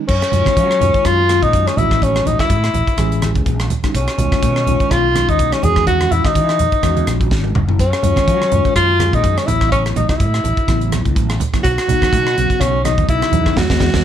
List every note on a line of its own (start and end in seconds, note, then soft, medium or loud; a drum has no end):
0.08 0.21 F#2 medium
0.08 1.07 C#4 loud
0.08 kick medium
0.08 crash medium
0.22 cross-stick medium
0.22 closed hi-hat soft
0.31 0.45 F#2 medium
0.31 0.72 D#3 medium
0.31 0.72 G#3 medium
0.31 0.72 C#4 medium
0.31 0.73 F4 medium
0.31 closed hi-hat medium
0.31 low conga medium
0.46 kick medium
0.46 cross-stick medium
0.46 closed hi-hat soft
0.46 high conga medium
0.57 0.79 F#3 medium
0.57 kick loud
0.57 closed hi-hat medium
0.71 cross-stick medium
0.80 0.94 F#2 medium
0.80 1.20 D#3 medium
0.80 1.20 G#3 medium
0.80 1.21 C#4 medium
0.80 1.21 F4 medium
0.80 closed hi-hat medium
0.80 low conga medium
0.94 kick medium
0.94 closed hi-hat soft
1.05 1.39 F#2 medium
1.05 1.44 F4 loud
1.05 kick medium
1.05 cross-stick medium
1.05 closed hi-hat medium
1.28 1.76 D#3 medium
1.28 1.77 G#3 medium
1.28 1.77 C#4 medium
1.28 1.78 F4 medium
1.28 cross-stick medium
1.28 closed hi-hat medium
1.42 1.53 A#2 medium
1.42 1.69 D#4 medium
1.42 kick medium
1.42 closed hi-hat soft
1.53 1.66 F#2 medium
1.53 kick medium
1.53 closed hi-hat medium
1.67 1.79 C#4 medium
1.67 cross-stick medium
1.67 closed hi-hat soft
1.77 2.22 A1 medium
1.77 2.56 D#3 medium
1.77 2.56 G#3 medium
1.77 2.56 C#4 medium
1.77 2.04 E4 medium
1.77 2.56 F#4 medium
1.77 closed hi-hat medium
1.77 high conga medium
1.77 low conga medium
1.91 kick medium
1.91 cross-stick medium
2.02 2.29 C#4 medium
2.02 kick medium
2.02 closed hi-hat medium
2.15 cross-stick medium
2.15 closed hi-hat soft
2.25 2.38 A1 medium
2.25 2.39 D#4 medium
2.25 closed hi-hat medium
2.25 low conga medium
2.39 3.32 E4 medium
2.39 kick medium
2.39 cross-stick medium
2.39 closed hi-hat soft
2.39 high conga medium
2.50 2.72 A2 medium
2.50 kick loud
2.50 closed hi-hat medium
2.63 cross-stick medium
2.63 closed hi-hat soft
2.74 2.86 A1 medium
2.74 closed hi-hat medium
2.74 low conga medium
2.87 muted fretless electric bass stroke soft
2.87 kick medium
2.87 closed hi-hat soft
2.97 3.32 A1 medium
2.97 3.65 E3 medium
2.97 3.65 G#3 medium
2.97 3.66 C#4 medium
2.97 3.66 G#4 medium
2.97 kick medium
2.97 cross-stick medium
2.97 closed hi-hat medium
3.12 closed hi-hat soft
3.22 cross-stick medium
3.22 closed hi-hat medium
3.22 high conga medium
3.35 3.45 C#2 medium
3.35 kick medium
3.35 closed hi-hat soft
3.46 3.68 A#1 medium
3.46 kick medium
3.46 closed hi-hat medium
3.59 cross-stick medium
3.59 closed hi-hat soft
3.70 closed hi-hat medium
3.70 high conga medium
3.70 low conga medium
3.83 3.95 D#3 medium
3.83 3.95 G#3 medium
3.83 3.95 C#4 medium
3.83 3.95 D#4 medium
3.83 kick medium
3.83 cross-stick medium
3.83 closed hi-hat soft
3.94 4.07 B1 medium
3.94 4.92 C#4 medium
3.94 kick medium
3.94 closed hi-hat medium
4.07 cross-stick medium
4.07 closed hi-hat soft
4.18 4.31 B1 medium
4.18 4.58 D#3 medium
4.18 4.58 G#3 medium
4.18 4.58 C#4 medium
4.18 4.59 F4 medium
4.18 closed hi-hat medium
4.18 low conga medium
4.32 muted fretless electric bass stroke soft
4.32 kick medium
4.32 cross-stick medium
4.32 closed hi-hat soft
4.32 high conga medium
4.42 4.65 B2 medium
4.42 kick loud
4.42 closed hi-hat medium
4.56 cross-stick medium
4.66 4.79 B1 medium
4.66 5.06 D#3 medium
4.66 5.07 G#3 medium
4.66 5.07 C#4 medium
4.66 5.07 F4 medium
4.66 closed hi-hat medium
4.66 low conga medium
4.80 kick medium
4.80 closed hi-hat soft
4.91 5.25 B1 medium
4.91 5.30 F4 loud
4.91 kick medium
4.91 cross-stick medium
4.91 closed hi-hat medium
5.14 5.61 D#3 medium
5.14 5.62 G#3 medium
5.14 5.62 C#4 medium
5.14 5.63 D#4 medium
5.14 cross-stick medium
5.14 closed hi-hat medium
5.14 high conga medium
5.29 5.38 D#2 medium
5.29 5.54 D#4 medium
5.29 kick medium
5.29 closed hi-hat soft
5.39 5.51 B1 medium
5.39 kick loud
5.39 closed hi-hat medium
5.52 5.65 C#4 medium
5.52 cross-stick medium
5.52 closed hi-hat soft
5.62 6.08 E2 medium
5.62 6.40 D#3 medium
5.62 6.41 G#3 medium
5.62 6.41 C#4 medium
5.62 6.41 F#4 medium
5.62 5.86 G#4 medium
5.62 closed hi-hat medium
5.62 high conga medium
5.62 low conga medium
5.76 kick medium
5.76 cross-stick medium
5.87 6.13 F#4 loud
5.87 kick medium
5.87 closed hi-hat medium
5.87 low conga medium
6.00 cross-stick medium
6.00 closed hi-hat soft
6.00 high conga medium
6.11 6.24 E2 medium
6.11 6.26 E4 medium
6.11 closed hi-hat medium
6.11 low conga medium
6.25 7.21 D#4 medium
6.25 kick medium
6.25 cross-stick medium
6.25 closed hi-hat soft
6.25 high conga medium
6.35 6.57 E3 medium
6.35 kick loud
6.35 closed hi-hat medium
6.49 cross-stick medium
6.49 closed hi-hat soft
6.59 6.72 E2 medium
6.59 closed hi-hat medium
6.59 low conga medium
6.72 muted fretless electric bass stroke soft
6.72 kick medium
6.72 closed hi-hat soft
6.82 7.05 E2 medium
6.82 7.50 D#3 medium
6.82 7.50 G#3 medium
6.82 7.51 C#4 medium
6.82 7.51 F#4 loud
6.82 kick medium
6.82 cross-stick medium
6.82 closed hi-hat medium
6.96 closed hi-hat soft
6.96 high conga medium
7.07 7.29 A#1 medium
7.07 cross-stick medium
7.07 closed hi-hat medium
7.07 high conga medium
7.21 kick medium
7.21 closed hi-hat soft
7.31 7.53 G#1 medium
7.31 kick loud
7.31 snare medium
7.44 high tom medium
7.55 7.78 F#1 medium
7.55 mid tom medium
7.55 high conga medium
7.55 low conga medium
7.68 7.79 D#3 medium
7.68 7.80 G#3 medium
7.68 7.80 C#4 medium
7.68 7.80 E4 medium
7.68 floor tom medium
7.79 7.92 F#2 medium
7.79 8.72 C#4 medium
7.79 kick medium
7.79 closed hi-hat medium
7.93 cross-stick medium
7.93 closed hi-hat soft
8.03 8.16 F#2 medium
8.03 8.43 D#3 medium
8.03 8.43 G#3 medium
8.03 8.43 C#4 medium
8.03 8.44 F4 medium
8.03 closed hi-hat medium
8.03 low conga medium
8.16 kick medium
8.16 cross-stick medium
8.16 closed hi-hat soft
8.16 high conga medium
8.27 8.50 F#3 medium
8.27 kick loud
8.27 closed hi-hat medium
8.42 cross-stick medium
8.51 8.64 F#2 medium
8.51 8.91 D#3 medium
8.51 8.91 G#3 medium
8.51 8.91 C#4 medium
8.51 8.91 F4 medium
8.51 closed hi-hat medium
8.51 low conga medium
8.65 muted fretless electric bass stroke soft
8.65 kick medium
8.65 closed hi-hat soft
8.76 9.10 F#2 medium
8.76 9.16 F4 loud
8.76 kick medium
8.76 cross-stick medium
8.76 closed hi-hat medium
9.00 9.47 D#3 medium
9.00 9.48 G#3 medium
9.00 9.48 C#4 medium
9.00 9.48 G#4 medium
9.00 cross-stick medium
9.00 closed hi-hat medium
9.00 high conga medium
9.13 9.23 A#2 medium
9.13 9.39 D#4 medium
9.13 kick medium
9.13 closed hi-hat soft
9.24 9.36 F#2 medium
9.24 kick medium
9.24 closed hi-hat medium
9.37 9.48 C#4 medium
9.37 cross-stick medium
9.37 closed hi-hat soft
9.46 9.93 A1 medium
9.46 10.25 C#3 medium
9.46 10.26 F#3 medium
9.46 10.26 B3 medium
9.46 9.71 E4 medium
9.46 10.26 E4 medium
9.46 closed hi-hat medium
9.46 low conga medium
9.61 kick medium
9.61 cross-stick medium
9.72 9.83 C#4 medium
9.72 kick medium
9.72 closed hi-hat medium
9.86 cross-stick medium
9.86 closed hi-hat soft
9.96 10.09 A1 medium
9.96 10.09 D#4 medium
9.96 closed hi-hat medium
9.96 low conga medium
10.09 11.02 E4 medium
10.09 kick medium
10.09 cross-stick medium
10.09 closed hi-hat soft
10.09 high conga medium
10.20 10.42 A2 medium
10.20 kick loud
10.20 closed hi-hat medium
10.34 cross-stick medium
10.34 closed hi-hat soft
10.44 10.56 A1 medium
10.44 closed hi-hat medium
10.44 low conga medium
10.57 muted fretless electric bass stroke soft
10.57 kick medium
10.57 closed hi-hat soft
10.67 11.02 A1 medium
10.67 11.35 C#3 medium
10.67 11.35 F#3 medium
10.67 11.35 B3 medium
10.67 11.36 E4 medium
10.67 kick medium
10.67 cross-stick medium
10.67 closed hi-hat medium
10.81 closed hi-hat soft
10.92 cross-stick medium
10.92 closed hi-hat medium
10.92 high conga medium
11.05 11.15 C#2 medium
11.05 kick medium
11.05 closed hi-hat soft
11.16 11.38 A1 medium
11.16 kick medium
11.16 closed hi-hat medium
11.29 cross-stick medium
11.29 closed hi-hat soft
11.40 closed hi-hat medium
11.40 high conga medium
11.40 low conga medium
11.53 11.64 C#3 medium
11.53 11.64 F#3 medium
11.53 11.64 B3 medium
11.53 11.65 E4 medium
11.53 kick medium
11.53 cross-stick medium
11.53 closed hi-hat soft
11.64 11.77 B1 medium
11.64 12.62 F#4 loud
11.64 kick medium
11.64 closed hi-hat medium
11.78 cross-stick medium
11.78 closed hi-hat soft
11.87 12.01 B1 medium
11.87 12.27 C#3 medium
11.87 12.27 F#3 medium
11.87 12.28 B3 medium
11.87 12.28 D#4 loud
11.87 closed hi-hat medium
11.87 low conga medium
12.02 kick medium
12.02 cross-stick medium
12.02 closed hi-hat soft
12.02 high conga medium
12.13 12.34 B2 medium
12.13 kick loud
12.13 closed hi-hat medium
12.27 cross-stick medium
12.36 12.49 B1 medium
12.36 12.75 C#3 medium
12.36 12.76 F#3 medium
12.36 12.76 B3 medium
12.36 12.76 F#4 loud
12.36 closed hi-hat medium
12.50 muted fretless electric bass stroke soft
12.50 kick medium
12.50 closed hi-hat soft
12.61 12.95 B1 medium
12.61 12.84 C#4 loud
12.61 kick medium
12.61 cross-stick medium
12.61 closed hi-hat medium
12.84 13.30 C#3 medium
12.84 13.31 F#3 medium
12.84 13.32 B3 medium
12.84 13.07 D#4 medium
12.84 13.33 D#4 medium
12.84 cross-stick medium
12.84 closed hi-hat medium
12.84 high conga medium
12.98 13.08 D#2 medium
12.98 kick medium
12.98 closed hi-hat soft
13.09 13.21 B1 medium
13.09 13.59 E4 medium
13.09 kick loud
13.09 closed hi-hat medium
13.22 cross-stick medium
13.22 closed hi-hat soft
13.32 13.54 E2 medium
13.32 13.56 C#3 medium
13.32 13.57 F#3 medium
13.32 13.56 B3 medium
13.32 13.57 D#4 medium
13.32 closed hi-hat medium
13.32 high conga medium
13.32 low conga medium
13.46 kick medium
13.46 cross-stick medium
13.56 13.67 E2 medium
13.56 13.66 E3 medium
13.56 13.66 G#3 medium
13.56 13.66 B3 medium
13.56 14.04 F#4 medium
13.56 kick medium
13.56 snare medium
13.56 high conga medium
13.70 13.78 E2 medium
13.70 13.77 E3 medium
13.70 13.77 G#3 medium
13.70 13.77 B3 medium
13.70 kick medium
13.70 snare medium
13.70 high conga medium
13.80 13.91 E2 medium
13.80 13.90 E3 loud
13.80 13.89 G#3 loud
13.80 13.89 B3 medium
13.80 kick medium
13.80 snare medium
13.80 high conga loud
13.94 14.02 E2 medium
13.94 14.01 E3 medium
13.94 14.01 G#3 medium
13.94 14.01 B3 medium
13.94 kick medium
13.94 snare medium
13.94 high conga loud